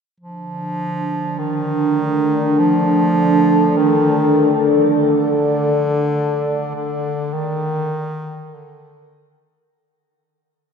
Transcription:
0.20 1.40 F3 loud
0.20 9.76 D4 medium
1.38 2.60 D#3 loud
1.69 9.75 A4 medium
2.59 3.78 F3 loud
3.77 4.70 D#3 medium
3.94 9.75 D5 medium
4.96 6.70 D3 medium
6.75 7.35 D3 medium
7.34 8.56 D#3 loud
8.55 9.45 D3 medium

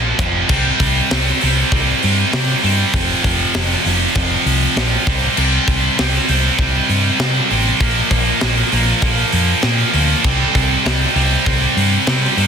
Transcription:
0.00 0.11 A#1 medium
0.00 0.17 A#2 medium
0.00 0.17 F3 medium
0.00 0.17 A#3 medium
0.19 0.42 F1 medium
0.19 0.48 F2 medium
0.19 0.48 C3 medium
0.19 0.49 F3 loud
0.19 kick loud
0.19 closed hi-hat medium
0.49 0.69 C2 loud
0.49 1.10 C3 medium
0.49 1.11 G3 medium
0.49 1.12 C4 medium
0.49 kick loud
0.49 crash loud
0.80 1.00 C2 medium
0.80 kick medium
0.80 open hi-hat medium
1.11 1.31 C2 medium
1.11 1.40 C3 medium
1.11 1.41 G3 medium
1.11 1.42 C4 medium
1.11 snare loud
1.11 open hi-hat medium
1.41 1.62 C2 medium
1.41 1.71 C3 medium
1.41 1.72 G3 medium
1.41 1.73 C4 medium
1.41 open hi-hat medium
1.72 1.92 C2 loud
1.72 2.31 C3 medium
1.72 2.32 G3 loud
1.72 2.33 C4 loud
1.72 kick loud
1.72 open hi-hat medium
2.02 2.23 G2 medium
2.02 open hi-hat medium
2.33 2.53 C3 medium
2.33 2.63 G3 medium
2.33 snare loud
2.33 open hi-hat medium
2.63 2.83 G2 medium
2.63 2.92 C3 medium
2.63 2.92 G3 loud
2.63 5.07 C4 loud
2.63 open hi-hat medium
2.93 3.13 F1 medium
2.93 3.54 F2 medium
2.93 3.54 C3 medium
2.93 3.55 F3 loud
2.93 kick loud
2.93 open hi-hat medium
3.24 3.44 F1 medium
3.24 kick medium
3.24 open hi-hat medium
3.54 3.74 F1 medium
3.54 3.85 F2 medium
3.54 3.85 C3 medium
3.54 3.85 F3 medium
3.54 snare loud
3.54 open hi-hat medium
3.85 4.05 F1 medium
3.85 4.15 F2 medium
3.85 4.16 C3 medium
3.85 4.16 F3 medium
3.85 open hi-hat medium
4.15 4.35 F1 loud
4.15 4.76 F2 loud
4.15 4.76 C3 loud
4.15 4.77 F3 loud
4.15 kick loud
4.15 open hi-hat medium
4.46 4.65 C2 medium
4.46 open hi-hat medium
4.76 4.96 A#1 loud
4.76 5.05 F2 medium
4.76 5.06 C3 medium
4.76 5.06 F3 medium
4.76 snare loud
4.76 open hi-hat medium
5.07 5.26 C2 loud
5.07 5.36 C3 loud
5.07 5.37 G3 loud
5.07 5.37 C4 loud
5.07 kick loud
5.07 open hi-hat medium
5.37 5.57 C2 loud
5.37 5.97 C3 medium
5.37 5.98 G3 loud
5.37 5.98 C4 loud
5.37 crash loud
5.68 5.87 C2 medium
5.68 kick medium
5.68 open hi-hat medium
5.98 6.18 C2 medium
5.98 6.27 C3 medium
5.98 6.28 G3 medium
5.98 6.28 C4 medium
5.98 snare loud
5.98 open hi-hat medium
6.28 6.48 C2 medium
6.28 6.58 C3 medium
6.28 6.58 G3 medium
6.28 6.58 C4 loud
6.28 open hi-hat medium
6.58 6.78 C2 loud
6.58 7.18 C3 loud
6.58 7.19 G3 loud
6.58 7.19 C4 loud
6.58 kick loud
6.58 open hi-hat medium
6.89 7.09 G2 medium
6.89 open hi-hat medium
7.19 7.39 C3 loud
7.19 7.49 C3 loud
7.19 7.49 G3 medium
7.19 7.50 C4 medium
7.19 snare loud
7.50 7.70 A1 loud
7.50 7.79 C3 medium
7.50 7.79 G3 medium
7.50 7.79 C4 medium
7.50 open hi-hat medium
7.80 8.00 A#1 loud
7.80 8.40 A#2 loud
7.80 8.40 F3 medium
7.80 8.41 A#3 loud
7.80 kick loud
7.80 open hi-hat medium
8.11 8.31 A#1 medium
8.11 kick medium
8.11 open hi-hat medium
8.41 8.62 A#1 medium
8.41 8.71 A#2 medium
8.41 8.72 F3 medium
8.41 8.72 A#3 medium
8.41 snare loud
8.41 open hi-hat medium
8.72 8.92 A#1 loud
8.72 9.01 A#2 medium
8.72 9.02 F3 medium
8.72 9.02 A#3 medium
8.72 open hi-hat medium
9.02 9.22 A#1 loud
9.02 9.63 F3 loud
9.02 9.63 A#3 loud
9.02 kick loud
9.02 open hi-hat medium
9.32 9.53 F2 medium
9.32 open hi-hat medium
9.63 9.83 A#2 loud
9.63 9.93 A#2 medium
9.63 9.93 F3 loud
9.63 9.93 A#3 medium
9.63 snare medium
9.94 10.13 D2 medium
9.94 10.22 A#2 medium
9.94 10.23 F3 medium
9.94 10.23 A#3 medium
9.94 open hi-hat medium
10.24 10.44 C2 medium
10.24 10.84 C3 medium
10.24 10.84 G3 medium
10.24 10.85 C4 medium
10.24 kick loud
10.24 crash loud
10.55 10.75 C2 medium
10.55 kick medium
10.55 open hi-hat medium
10.85 11.05 C2 medium
10.85 11.14 C3 medium
10.85 11.15 G3 medium
10.85 11.16 C4 loud
10.85 snare loud
10.85 open hi-hat medium
11.15 11.35 C2 loud
11.15 11.44 C3 medium
11.15 11.45 G3 medium
11.15 11.46 C4 medium
11.15 open hi-hat medium
11.45 11.65 C2 loud
11.45 12.06 C3 loud
11.45 12.07 G3 medium
11.45 12.08 C4 loud
11.45 kick loud
11.45 open hi-hat medium
11.77 11.96 G2 medium
11.77 open hi-hat medium
12.07 12.27 C3 loud
12.07 12.36 C3 medium
12.07 12.37 G3 loud
12.07 12.37 C4 medium
12.07 snare loud
12.07 open hi-hat medium
12.37 12.47 G2 medium
12.37 12.47 C3 medium
12.37 12.47 G3 medium
12.37 12.47 C4 loud
12.37 open hi-hat medium

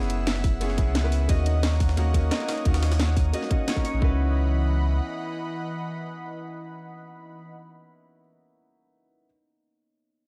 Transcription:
0.00 0.80 F#1 loud
0.00 0.60 B3 medium
0.00 0.61 B3 medium
0.00 0.61 C#4 medium
0.00 0.95 C#4 medium
0.00 0.44 E4 medium
0.00 0.61 E4 medium
0.00 0.62 G#4 medium
0.00 1.05 B4 medium
0.00 0.26 E5 loud
0.00 3.98 F#5 medium
0.00 1.27 E6 medium
0.00 snare soft
0.10 closed hi-hat medium
0.10 ride medium
0.27 1.35 E5 loud
0.27 snare loud
0.27 closed hi-hat medium
0.27 ride medium
0.36 snare medium
0.44 1.35 E4 medium
0.44 kick loud
0.44 open hi-hat medium
0.44 ride medium
0.60 0.76 B3 medium
0.60 0.95 B3 medium
0.60 0.76 C#4 medium
0.60 0.77 E4 medium
0.60 0.77 G#4 loud
0.60 closed hi-hat medium
0.60 ride medium
0.70 snare soft
0.77 0.88 B1 medium
0.77 1.01 B3 medium
0.77 1.02 C#4 medium
0.77 1.02 E4 medium
0.77 1.02 G#4 medium
0.77 kick loud
0.77 closed hi-hat medium
0.77 ride medium
0.87 1.28 C#2 loud
0.95 1.69 B3 medium
0.95 snare loud
0.95 closed hi-hat medium
0.95 ride medium
1.03 1.27 B3 medium
1.03 1.27 C#4 medium
1.03 1.27 E4 medium
1.03 1.28 B4 medium
1.12 open hi-hat medium
1.12 ride medium
1.28 1.96 D#2 loud
1.28 1.95 A#3 medium
1.28 1.95 C#4 medium
1.28 1.96 D#4 medium
1.28 1.96 F#4 loud
1.28 3.99 C#5 medium
1.28 2.31 D#5 loud
1.28 3.99 D#6 medium
1.28 kick loud
1.28 closed hi-hat medium
1.28 ride medium
1.46 2.48 D#4 medium
1.46 closed hi-hat loud
1.46 ride medium
1.63 1.97 A#3 medium
1.63 snare loud
1.63 closed hi-hat medium
1.63 open hi-hat medium
1.72 snare medium
1.80 kick loud
1.80 snare soft
1.80 open hi-hat medium
1.80 ride medium
1.89 snare medium
1.97 2.30 D#2 medium
1.97 2.12 A#3 medium
1.97 2.65 A#3 medium
1.97 2.13 C#4 medium
1.97 2.13 D#4 medium
1.97 2.13 F#4 medium
1.97 snare soft
1.97 closed hi-hat medium
1.97 ride medium
2.14 2.38 A#3 medium
2.14 2.38 C#4 medium
2.14 2.38 D#4 medium
2.14 2.39 F#4 medium
2.14 kick medium
2.14 closed hi-hat loud
2.14 ride medium
2.31 3.33 D#5 loud
2.31 snare loud
2.31 closed hi-hat medium
2.31 ride medium
2.39 2.62 A#3 medium
2.39 2.63 C#4 medium
2.39 2.64 D#4 medium
2.39 2.64 A#4 medium
2.39 ride soft
2.48 5.19 D#4 medium
2.48 snare loud
2.48 open hi-hat medium
2.48 ride medium
2.57 ride soft
2.64 3.32 D#2 loud
2.64 3.31 A#3 medium
2.64 2.99 A#3 medium
2.64 3.31 C#4 medium
2.64 3.32 D#4 medium
2.64 3.33 F#4 medium
2.64 kick loud
2.64 closed hi-hat medium
2.64 ride medium
2.74 snare loud
2.74 ride medium
2.83 snare loud
2.83 closed hi-hat loud
2.83 open hi-hat medium
2.92 snare loud
2.92 open hi-hat medium
3.00 4.08 A#3 medium
3.00 snare loud
3.00 closed hi-hat medium
3.00 open hi-hat medium
3.09 ride soft
3.17 kick loud
3.17 open hi-hat medium
3.17 ride medium
3.33 3.48 A#3 medium
3.33 3.49 C#4 medium
3.33 3.49 D#4 medium
3.33 3.50 F#4 loud
3.33 5.12 D#5 loud
3.33 closed hi-hat medium
3.33 ride medium
3.42 snare soft
3.50 3.74 A#3 medium
3.50 3.74 C#4 medium
3.50 3.67 C#4 medium
3.50 3.75 D#4 medium
3.50 3.75 F#4 medium
3.50 kick loud
3.50 closed hi-hat loud
3.68 6.58 C#4 loud
3.68 snare loud
3.68 closed hi-hat medium
3.68 ride medium
3.75 3.99 A#3 medium
3.75 4.00 C#4 medium
3.75 3.98 D#4 medium
3.75 4.00 A#4 medium
3.75 kick medium
3.75 ride soft
3.85 5.76 C#5 loud
3.85 open hi-hat medium
3.85 ride medium
3.94 4.01 A#1 medium
3.99 5.00 C#2 loud
3.99 7.51 E3 medium
3.99 7.12 B3 medium
3.99 8.19 D#4 medium
3.99 8.20 E4 medium
3.99 8.21 F#4 medium
3.99 7.51 D#5 medium
3.99 7.51 F#5 medium
3.99 7.51 B5 medium
3.99 kick loud
4.04 8.22 B4 medium

